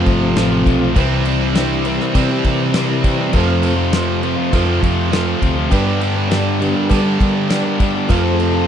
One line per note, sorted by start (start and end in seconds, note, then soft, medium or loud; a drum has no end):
0.00 0.35 F2 loud
0.00 0.36 C3 loud
0.00 0.37 F3 loud
0.00 0.91 F3 medium
0.00 0.91 A3 medium
0.00 0.91 C4 medium
0.00 0.25 F4 medium
0.00 0.25 A4 medium
0.00 0.19 A4 medium
0.00 0.25 C5 medium
0.05 0.34 G1 medium
0.05 0.36 F3 medium
0.05 0.36 A3 medium
0.05 0.38 C4 medium
0.05 0.38 F4 medium
0.05 kick medium
0.05 crash soft
0.20 0.35 G4 medium
0.35 0.63 A1 medium
0.35 0.81 F2 loud
0.35 0.81 C3 medium
0.35 0.53 F3 medium
0.35 0.52 A3 loud
0.35 0.52 C4 loud
0.35 0.94 F4 loud
0.35 0.84 F4 medium
0.35 0.50 F4 medium
0.35 0.84 A4 medium
0.35 0.84 C5 medium
0.35 snare loud
0.35 cowbell medium
0.35 crash medium
0.51 0.65 F3 medium
0.51 0.66 A3 medium
0.51 0.67 C4 medium
0.51 0.67 F4 medium
0.66 0.93 B1 medium
0.66 0.94 F2 medium
0.66 0.94 C3 medium
0.66 0.83 F3 medium
0.66 0.81 A3 medium
0.66 0.82 C4 medium
0.66 0.80 F4 medium
0.66 kick medium
0.66 crash medium
0.81 0.95 F3 medium
0.81 0.95 A3 medium
0.81 0.97 C4 medium
0.81 0.94 F4 medium
0.94 1.97 C2 medium
0.94 2.12 C3 medium
0.94 1.55 C3 medium
0.94 3.30 E3 medium
0.94 1.24 E3 loud
0.94 1.25 G3 medium
0.94 3.30 G3 medium
0.94 2.14 G3 loud
0.94 1.27 C4 loud
0.94 3.31 C4 medium
0.94 1.43 E4 medium
0.94 1.27 E4 loud
0.94 1.44 G4 medium
0.94 1.44 C5 medium
0.94 kick loud
0.94 cowbell loud
0.94 crash medium
0.98 2.17 C4 loud
1.25 1.55 E3 medium
1.25 1.42 G3 medium
1.25 1.41 C4 medium
1.25 1.39 E4 medium
1.25 crash medium
1.40 1.57 G3 medium
1.40 1.58 C4 medium
1.40 1.58 E4 medium
1.52 2.15 C3 medium
1.52 1.56 C#4 medium
1.52 2.03 E4 medium
1.52 2.03 G4 medium
1.52 snare medium
1.52 crash medium
1.56 1.84 E3 medium
1.56 1.85 G3 medium
1.56 1.87 C4 loud
1.56 1.85 D4 loud
1.56 1.87 E4 medium
1.56 2.04 C5 medium
1.56 cowbell medium
1.85 2.13 C3 medium
1.85 2.30 E3 medium
1.85 2.02 G3 medium
1.85 2.01 C4 medium
1.85 1.99 E4 medium
1.85 2.00 G4 medium
1.85 cowbell medium
1.85 crash medium
2.00 2.31 G3 medium
2.00 2.30 C4 medium
2.00 2.28 E4 medium
2.00 2.14 A#4 medium
2.00 snare soft
2.14 2.73 C3 medium
2.14 2.40 C3 medium
2.14 2.74 G3 loud
2.14 2.74 C4 loud
2.14 2.62 E4 medium
2.14 2.62 G4 medium
2.14 2.29 C5 medium
2.14 2.63 D5 medium
2.14 kick medium
2.14 cowbell loud
2.14 crash medium
2.30 2.44 G3 medium
2.30 2.45 C4 medium
2.30 2.46 E4 medium
2.30 2.45 G4 medium
2.44 3.20 C3 medium
2.44 2.74 E3 medium
2.44 2.75 G3 medium
2.44 2.75 C4 medium
2.44 2.76 E4 medium
2.44 2.60 A#4 loud
2.44 kick medium
2.44 crash medium
2.61 2.75 C5 medium
2.74 3.19 C3 medium
2.74 3.01 E3 loud
2.74 2.90 G3 medium
2.74 2.89 C4 loud
2.74 3.22 E4 medium
2.74 2.87 E4 loud
2.74 3.22 G4 medium
2.74 3.23 C5 medium
2.74 2.89 D5 medium
2.74 snare loud
2.74 cowbell medium
2.74 crash medium
2.89 3.02 G3 medium
2.89 3.03 C4 medium
2.89 3.04 E4 medium
2.89 3.04 A#4 medium
3.02 3.32 C3 medium
3.02 3.31 E3 medium
3.02 3.19 G3 medium
3.02 3.18 C4 medium
3.02 3.16 E4 medium
3.02 3.18 C5 medium
3.02 kick medium
3.02 crash medium
3.17 3.33 G3 medium
3.17 3.32 C4 medium
3.17 3.31 E4 medium
3.17 3.34 D5 loud
3.32 3.91 F2 medium
3.32 4.50 F2 medium
3.32 4.35 F2 loud
3.32 3.91 C3 loud
3.32 4.52 C3 medium
3.32 3.61 F3 medium
3.32 3.74 F3 medium
3.32 3.62 A3 medium
3.32 3.63 C4 loud
3.32 3.81 F4 medium
3.32 3.64 F4 loud
3.32 3.82 A4 medium
3.32 3.82 C5 medium
3.32 kick loud
3.32 cowbell loud
3.32 crash medium
3.36 4.52 F3 loud
3.36 3.75 A3 medium
3.36 3.75 C4 medium
3.36 3.50 F5 medium
3.51 3.64 C5 medium
3.62 3.79 F3 medium
3.62 3.78 A3 medium
3.62 3.77 C4 medium
3.62 3.76 F4 medium
3.62 3.66 B4 medium
3.62 crash medium
3.68 4.81 C5 loud
3.77 3.92 F3 medium
3.77 3.92 A3 medium
3.77 3.93 C4 medium
3.77 3.93 F4 medium
3.92 4.52 F2 medium
3.92 4.52 C3 medium
3.92 4.20 F3 loud
3.92 4.21 A3 loud
3.92 4.22 C4 medium
3.92 4.42 F4 medium
3.92 4.24 F4 medium
3.92 4.42 A4 medium
3.92 4.42 C5 medium
3.92 snare loud
3.92 cowbell medium
3.92 crash medium
4.21 4.51 F2 loud
4.21 4.52 C3 loud
4.21 4.38 F3 medium
4.21 4.37 A3 medium
4.21 4.36 C4 medium
4.21 4.35 F4 medium
4.21 cowbell medium
4.21 crash medium
4.36 4.67 F3 medium
4.36 4.66 A3 medium
4.36 4.65 C4 medium
4.36 4.64 F4 medium
4.52 5.10 F2 loud
4.52 4.78 F2 medium
4.52 5.10 C3 loud
4.52 5.11 F3 loud
4.52 5.01 F4 medium
4.52 5.01 A4 medium
4.52 5.01 C5 loud
4.52 kick medium
4.52 cowbell medium
4.52 crash medium
4.65 4.79 F3 medium
4.65 4.80 A3 medium
4.65 4.81 C4 medium
4.65 4.83 F4 medium
4.80 5.33 F2 medium
4.80 5.10 F3 medium
4.80 5.11 A3 medium
4.80 5.12 C4 medium
4.80 5.12 F4 medium
4.80 kick medium
4.80 crash medium
5.10 5.56 F2 medium
5.10 5.56 C3 medium
5.10 5.27 F3 medium
5.10 5.26 A3 loud
5.10 5.26 C4 loud
5.10 5.60 F4 medium
5.10 5.25 F4 loud
5.10 5.61 A4 medium
5.10 5.61 C5 loud
5.10 snare loud
5.10 cowbell medium
5.10 crash medium
5.26 5.39 F3 medium
5.26 5.40 A3 medium
5.26 5.41 C4 medium
5.26 5.42 F4 medium
5.40 5.67 D2 medium
5.40 5.69 F2 medium
5.40 5.70 C3 medium
5.40 5.58 F3 medium
5.40 5.57 A3 medium
5.40 5.56 C4 medium
5.40 5.55 F4 medium
5.40 kick medium
5.40 crash medium
5.56 5.71 F3 medium
5.56 5.71 A3 medium
5.56 5.70 C4 medium
5.56 5.70 F4 medium
5.70 6.29 G2 loud
5.70 6.88 G2 loud
5.70 6.73 G2 loud
5.70 6.29 D3 medium
5.70 6.89 D3 medium
5.70 5.99 G3 loud
5.70 6.00 B3 loud
5.70 6.19 D4 medium
5.70 6.01 D4 loud
5.70 6.19 G4 medium
5.70 6.02 G4 loud
5.70 6.20 B4 loud
5.70 kick loud
5.70 cowbell loud
5.70 crash medium
5.75 6.90 G3 loud
6.00 6.17 G3 medium
6.00 6.17 B3 medium
6.00 6.16 D4 medium
6.00 6.15 G4 medium
6.00 crash medium
6.16 6.30 G3 medium
6.16 6.31 B3 medium
6.16 6.31 D4 medium
6.16 6.32 G4 medium
6.27 6.90 G2 loud
6.27 6.90 D3 loud
6.27 6.31 C#4 medium
6.27 cowbell medium
6.31 6.59 G3 loud
6.31 6.60 B3 medium
6.31 6.60 D4 loud
6.31 6.79 D4 medium
6.31 6.61 D4 loud
6.31 6.79 G4 medium
6.31 6.61 G4 loud
6.31 6.80 B4 medium
6.31 snare loud
6.31 crash medium
6.59 6.88 G2 loud
6.59 6.89 D3 medium
6.59 7.01 D3 medium
6.59 6.77 G3 medium
6.59 7.00 G3 medium
6.59 6.76 B3 medium
6.59 7.01 B3 medium
6.59 6.75 D4 medium
6.59 6.75 G4 medium
6.59 6.74 G4 medium
6.59 cowbell medium
6.59 crash medium
6.75 7.06 G3 medium
6.75 7.05 B3 medium
6.75 7.05 D4 medium
6.75 7.04 G4 medium
6.75 6.89 A#4 loud
6.90 7.47 G2 loud
6.90 7.48 D3 loud
6.90 7.49 G3 loud
6.90 7.16 G3 loud
6.90 7.38 D4 medium
6.90 7.38 G4 medium
6.90 7.38 A4 medium
6.90 7.04 D5 loud
6.90 kick medium
6.90 cowbell medium
6.90 crash medium
7.05 7.19 G3 medium
7.05 7.19 B3 medium
7.05 7.20 D4 medium
7.05 7.19 G4 medium
7.05 7.21 G4 medium
7.20 7.50 G3 medium
7.20 7.96 G3 medium
7.20 7.50 B3 medium
7.20 7.51 D4 medium
7.20 7.51 G4 medium
7.20 7.35 A#4 loud
7.20 kick medium
7.20 crash medium
7.35 7.49 D5 medium
7.49 7.94 G2 medium
7.49 7.95 D3 medium
7.49 7.68 G3 medium
7.49 7.67 B3 loud
7.49 7.98 D4 medium
7.49 7.66 D4 medium
7.49 7.98 G4 medium
7.49 7.64 G4 loud
7.49 7.98 B4 medium
7.49 7.64 D5 loud
7.49 snare loud
7.49 cowbell medium
7.49 crash medium
7.65 7.78 G3 medium
7.65 7.80 B3 medium
7.65 7.81 D4 medium
7.65 7.82 G4 medium
7.65 7.79 A#4 loud
7.78 8.07 G2 medium
7.78 8.07 D3 medium
7.78 7.97 G3 medium
7.78 7.96 B3 medium
7.78 7.94 D5 medium
7.78 kick medium
7.78 crash medium
7.82 7.95 D4 medium
7.82 7.94 G4 medium
7.95 8.09 G3 medium
7.95 8.09 B3 medium
7.95 8.08 D4 medium
7.95 8.08 G4 medium
7.95 8.09 D5 loud
8.09 8.67 F2 medium
8.09 8.67 F2 loud
8.09 8.67 C3 medium
8.09 8.67 F3 medium
8.09 8.39 F3 loud
8.09 8.67 F3 loud
8.09 8.67 A3 medium
8.09 8.67 C4 medium
8.09 8.40 C4 medium
8.09 8.57 F4 medium
8.09 8.41 F4 medium
8.09 8.58 A4 medium
8.09 8.42 A4 loud
8.09 8.58 C5 medium
8.09 8.23 F5 loud
8.09 kick loud
8.09 cowbell loud
8.09 crash medium
8.24 8.38 C5 medium
8.34 8.38 G#4 medium
8.39 8.67 F3 medium
8.39 8.57 C4 medium
8.39 8.55 F4 medium
8.39 8.67 A4 loud
8.39 crash medium
8.43 8.53 A4 medium
8.55 8.67 C4 medium
8.55 8.67 F4 medium
8.55 8.67 A4 medium